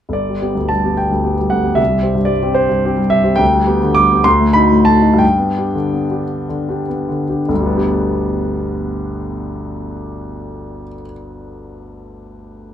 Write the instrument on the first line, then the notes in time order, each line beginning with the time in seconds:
grand piano
0.09 G1
0.13 D5
0.30 G3
0.41 B3 G4
0.55 D2
0.69 G3 A5
0.84 B3 G4
0.97 G5
1.11 D2
1.24 B3 G4
1.38 G3
1.50 D2 F#5
1.63 B3 G4
1.75 C2 E5
1.89 G3
2.02 C4 G4
2.15 G2
2.25 G3 D5
2.42 C4 G4
2.54 C5
2.69 G2
2.85 C4 G4
2.97 G3
3.10 G2 E5
3.24 C4 G4
3.36 D2 G5
3.53 G3
3.67 B3 G4
3.83 D3
3.95 G3 D6
4.11 B3 G4
4.24 D2 C6
4.40 A3
4.53 D#4 F#4 B5
4.71 A2
4.85 A3 A5
5.02 D#4 F#4
5.14 G2
5.18 G5
5.38 B3
5.57 D4 G4
5.74 D3
5.92 B3
6.11 D4 G4
6.49 D3
6.69 D4 G4
6.88 B3
7.08 D3
7.30 D4 G4
7.48 G1
7.54 D2
7.60 G3
7.66 B3
7.71 D4
7.77 G4